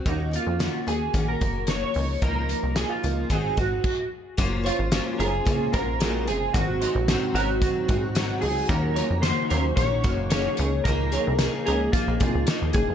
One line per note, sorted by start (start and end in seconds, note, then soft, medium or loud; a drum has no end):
0.06 0.39 D#2 loud
0.06 0.33 D#3 medium
0.06 0.33 A#3 medium
0.06 0.32 C#4 medium
0.06 0.32 D#4 medium
0.06 0.30 F#4 medium
0.06 kick loud
0.06 closed hi-hat medium
0.31 0.59 A#3 soft
0.31 0.60 C#4 soft
0.31 0.59 F#4 soft
0.31 closed hi-hat medium
0.36 0.90 F4 medium
0.47 0.68 F2 medium
0.59 0.87 D#3 medium
0.59 0.87 A#3 medium
0.59 0.87 C#4 medium
0.59 0.85 F#4 medium
0.59 snare loud
0.59 closed hi-hat loud
0.86 1.09 D#2 medium
0.86 1.14 A#3 soft
0.86 1.13 C#4 soft
0.86 1.14 F#4 soft
0.86 1.25 G#4 medium
0.86 closed hi-hat medium
1.14 1.36 A#1 medium
1.14 1.41 D#3 medium
1.14 1.41 A#3 medium
1.14 1.41 C#4 medium
1.14 1.40 F#4 medium
1.14 kick medium
1.14 closed hi-hat medium
1.28 1.69 A#4 medium
1.41 1.85 F#1 medium
1.41 1.68 A#3 soft
1.41 1.69 C#4 soft
1.41 1.68 F#4 soft
1.41 kick medium
1.41 closed hi-hat medium
1.67 1.95 D#3 medium
1.67 1.96 A#3 medium
1.67 1.96 C#4 medium
1.67 1.81 C#5 loud
1.67 snare loud
1.67 closed hi-hat medium
1.71 1.95 F#4 medium
1.83 2.22 C#5 medium
1.94 2.17 C#2 loud
1.94 2.22 A#3 soft
1.94 2.22 D#4 soft
1.94 open hi-hat soft
1.99 2.22 F3 soft
2.22 2.55 C#2 loud
2.22 2.49 C#3 medium
2.22 2.50 F3 medium
2.22 2.50 A#3 medium
2.22 2.47 D#4 medium
2.22 2.35 A#4 medium
2.22 kick loud
2.22 closed hi-hat medium
2.36 2.73 A#4 medium
2.49 2.76 F3 soft
2.49 2.77 A#3 soft
2.49 2.76 D#4 medium
2.49 closed hi-hat medium
2.63 2.85 C2 medium
2.76 3.03 C#3 medium
2.76 3.04 F3 medium
2.76 3.04 A#3 medium
2.76 3.02 D#4 medium
2.76 2.90 G#4 medium
2.76 snare loud
2.76 closed hi-hat loud
2.89 3.27 F4 medium
3.03 3.25 C#2 medium
3.03 3.30 F3 soft
3.03 3.31 A#3 soft
3.03 3.30 D#4 medium
3.03 closed hi-hat medium
3.30 3.52 G#1 medium
3.30 3.57 G#2 medium
3.30 3.57 D#3 medium
3.30 3.57 F#3 medium
3.30 3.58 C4 medium
3.30 3.56 D#4 medium
3.30 3.56 G#4 medium
3.30 kick medium
3.30 closed hi-hat medium
3.57 3.79 G#1 medium
3.57 3.86 F#3 soft
3.57 3.85 C4 soft
3.57 3.84 D#4 medium
3.57 4.08 F#4 medium
3.57 kick medium
3.57 snare soft
3.57 closed hi-hat medium
3.84 kick medium
3.84 crash medium
4.36 4.71 F#1 loud
4.36 8.65 C3 medium
4.36 4.65 F#3 medium
4.36 8.65 G#3 medium
4.36 6.51 A#3 medium
4.36 4.65 A#3 medium
4.36 4.65 C#4 medium
4.36 6.51 F4 medium
4.36 4.64 F4 loud
4.36 4.62 C5 loud
4.36 kick medium
4.36 closed hi-hat medium
4.64 4.91 C#4 soft
4.64 4.92 F4 medium
4.64 5.16 F4 medium
4.64 4.79 F4 medium
4.64 4.91 C5 medium
4.64 4.78 C#5 medium
4.64 closed hi-hat medium
4.79 5.01 G#1 medium
4.92 5.19 F#3 medium
4.92 5.19 A#3 medium
4.92 5.19 C#4 medium
4.92 5.19 F4 medium
4.92 5.18 C5 loud
4.92 snare loud
4.92 closed hi-hat loud
5.18 5.41 F#1 loud
5.18 5.32 C#4 medium
5.18 5.45 C#4 soft
5.18 5.46 F4 soft
5.18 5.73 G#4 loud
5.18 5.31 A#4 medium
5.18 5.46 C5 medium
5.18 closed hi-hat medium
5.45 5.68 C#2 medium
5.45 5.73 A#3 medium
5.45 5.73 C#4 medium
5.45 5.73 F4 medium
5.45 5.72 C5 medium
5.45 kick medium
5.45 closed hi-hat medium
5.73 6.29 A#1 medium
5.73 5.87 A#3 medium
5.73 6.01 C#4 medium
5.73 6.01 F4 medium
5.73 5.86 F#4 medium
5.73 6.23 A#4 medium
5.73 6.00 C5 medium
5.73 kick loud
5.73 snare soft
5.73 closed hi-hat medium
6.00 6.27 F#3 medium
6.00 6.28 A#3 medium
6.00 6.39 C4 medium
6.00 6.28 C#4 medium
6.00 6.28 F4 medium
6.00 6.38 G#4 medium
6.00 6.27 C5 medium
6.00 snare loud
6.00 closed hi-hat loud
6.28 6.49 F#1 medium
6.28 6.56 C#4 soft
6.28 6.55 F4 soft
6.28 6.55 G#4 medium
6.28 6.54 C5 soft
6.28 closed hi-hat medium
6.53 6.87 G#1 loud
6.53 6.81 G#2 medium
6.53 6.82 D#3 medium
6.53 10.55 F#3 medium
6.53 6.82 F#3 medium
6.53 6.82 C4 medium
6.53 12.95 D#4 medium
6.53 7.31 F#4 medium
6.53 6.80 F#4 loud
6.53 kick loud
6.53 closed hi-hat medium
6.81 7.08 F#3 soft
6.81 7.09 C4 medium
6.81 6.94 D#4 medium
6.81 7.08 F#4 medium
6.81 6.94 C5 medium
6.81 closed hi-hat medium
6.95 7.16 A#1 loud
7.08 7.35 G#2 medium
7.08 7.36 D#3 medium
7.08 7.36 F#3 medium
7.08 7.36 C4 loud
7.08 7.35 F#4 loud
7.08 snare loud
7.08 closed hi-hat loud
7.34 7.67 G#1 loud
7.34 7.63 C4 soft
7.34 7.48 C#4 medium
7.34 8.46 F#4 loud
7.34 7.62 F#4 medium
7.34 7.48 A#4 medium
7.34 closed hi-hat medium
7.39 7.62 F#3 soft
7.62 7.89 D#3 medium
7.62 7.90 F#3 medium
7.62 7.90 C4 medium
7.62 7.88 F#4 medium
7.62 kick loud
7.62 closed hi-hat medium
7.88 8.32 G#1 medium
7.88 8.02 C4 medium
7.88 8.15 C4 medium
7.88 8.16 F#4 medium
7.88 8.01 G#4 medium
7.88 kick loud
7.88 closed hi-hat medium
7.92 8.15 F#3 soft
8.15 8.42 G#2 medium
8.15 8.43 D#3 medium
8.15 8.43 F#3 loud
8.15 8.43 C4 loud
8.15 8.41 F#4 loud
8.15 snare loud
8.15 closed hi-hat loud
8.41 8.64 C#2 medium
8.41 8.70 C4 soft
8.41 8.70 F#4 medium
8.41 8.67 G#4 medium
8.41 open hi-hat soft
8.45 8.69 F#3 soft
8.69 9.02 D#2 loud
8.69 12.95 C#3 medium
8.69 8.97 D#3 medium
8.69 12.95 A#3 medium
8.69 8.97 A#3 medium
8.69 8.97 C#4 medium
8.69 8.95 F#4 medium
8.69 9.22 A#4 loud
8.69 kick loud
8.69 closed hi-hat medium
8.95 9.24 A#3 soft
8.95 9.24 C#4 medium
8.95 9.09 F4 medium
8.95 9.24 F#4 medium
8.95 9.09 C#5 medium
8.95 closed hi-hat medium
9.10 9.32 F2 medium
9.22 9.51 D#3 medium
9.22 9.51 A#3 medium
9.22 9.51 C#4 medium
9.22 9.76 C5 loud
9.22 snare loud
9.22 closed hi-hat loud
9.26 9.49 F#4 medium
9.50 9.73 D#2 loud
9.50 9.78 A#3 soft
9.50 9.64 C#4 medium
9.50 9.78 C#4 medium
9.50 9.78 F#4 soft
9.50 9.63 A#4 medium
9.50 closed hi-hat medium
9.76 10.07 A#1 loud
9.76 10.05 D#3 medium
9.76 10.05 A#3 medium
9.76 10.27 C#5 loud
9.76 kick medium
9.76 closed hi-hat loud
9.81 10.05 C#4 medium
9.81 10.03 F#4 medium
10.04 10.48 F#1 medium
10.04 10.17 A#3 medium
10.04 10.31 A#3 soft
10.04 10.32 C#4 medium
10.04 10.17 F#4 medium
10.04 10.32 F#4 medium
10.04 kick loud
10.04 snare soft
10.04 closed hi-hat medium
10.30 10.59 D#3 medium
10.30 10.59 A#3 medium
10.30 10.70 C#4 medium
10.30 10.59 C#4 medium
10.30 10.58 F#4 medium
10.30 10.69 G#4 medium
10.30 10.84 C#5 loud
10.30 snare loud
10.30 closed hi-hat loud
10.57 10.81 C#2 loud
10.57 12.95 F3 medium
10.57 10.86 D#4 soft
10.57 10.86 G#4 medium
10.57 closed hi-hat medium
10.62 10.86 A#3 soft
10.84 11.18 C#2 loud
10.84 11.13 C#3 medium
10.84 11.13 F3 medium
10.84 11.13 A#3 medium
10.84 11.62 A#4 medium
10.84 kick loud
10.84 closed hi-hat medium
10.88 11.13 D#4 medium
10.88 11.10 G#4 medium
11.12 11.41 A#3 soft
11.12 11.40 D#4 medium
11.12 11.26 F4 medium
11.12 11.39 G#4 medium
11.12 11.26 C#5 medium
11.12 closed hi-hat medium
11.27 11.48 C2 loud
11.39 11.67 C#3 medium
11.39 11.67 F3 medium
11.39 11.68 A#3 medium
11.39 11.68 D#4 medium
11.39 snare loud
11.39 closed hi-hat loud
11.43 11.66 G#4 medium
11.66 11.89 C#2 loud
11.66 11.79 C#4 medium
11.66 11.95 D#4 soft
11.66 11.91 G#4 medium
11.66 11.94 G#4 soft
11.66 11.79 A#4 medium
11.66 closed hi-hat medium
11.70 11.93 A#3 soft
11.92 12.20 F3 medium
11.92 12.21 A#3 medium
11.92 12.20 D#4 medium
11.92 12.73 F4 medium
11.92 kick medium
11.92 closed hi-hat loud
11.97 12.19 G#4 medium
12.08 12.18 A#1 medium
12.20 12.32 C2 medium
12.20 12.47 A#3 soft
12.20 12.34 C4 medium
12.20 12.48 D#4 medium
12.20 12.47 G#4 medium
12.20 12.34 G#4 medium
12.20 kick loud
12.20 closed hi-hat medium
12.35 12.45 C#2 medium
12.47 12.74 C#3 medium
12.47 12.75 F3 medium
12.47 12.75 A#3 medium
12.47 12.74 D#4 medium
12.47 12.73 G#4 medium
12.47 snare loud
12.47 closed hi-hat loud
12.62 12.72 D#2 medium
12.73 12.86 F#1 loud
12.73 12.95 A#3 soft
12.73 12.95 D#4 soft
12.73 12.95 G#4 medium
12.73 12.95 G#4 soft
12.73 kick medium
12.73 closed hi-hat medium
12.89 12.95 F1 medium